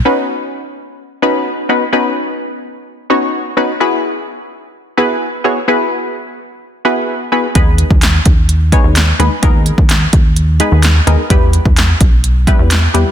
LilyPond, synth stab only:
\new Staff \with { instrumentName = "Synth stab" } { \time 4/4 \key b \major \tempo 4 = 128 <b cis' dis' fis' b'>4~ <b cis' dis' fis' b'>16 r4 r16 <b cis' dis' fis' b'>8 r8 <b cis' dis' fis' b'>8 | <b cis' dis' fis' b'>4~ <b cis' dis' fis' b'>16 r4 r16 <b cis' dis' fis' cis''>8 r8 <b cis' dis' fis' b'>8 | <b e' fis' gis' b'>4~ <b e' fis' gis' b'>16 r4 r16 <b e' fis' gis' b'>8 r8 <b e' fis' gis' cis''>8 | <b e' fis' gis' b'>4~ <b e' fis' gis' b'>16 r4 r16 <b e' fis' gis' b'>8 r8 <b e' fis' gis' b'>8 |
<gis b dis' gis' b'>4~ <gis b dis' gis' b'>16 r4 r16 <gis b dis' gis' cis''>8 r8 <gis b dis' gis' b'>8 | <gis b dis' gis' ais'>4~ <gis b dis' gis' ais'>16 r4 r16 <gis b dis' gis' b'>8 r8 <gis b dis' gis' ais'>8 | <g b e' g' b'>4~ <g b e' g' b'>16 r4 r16 <g b e' g' b'>8 r8 <g b e' g' b'>8 | }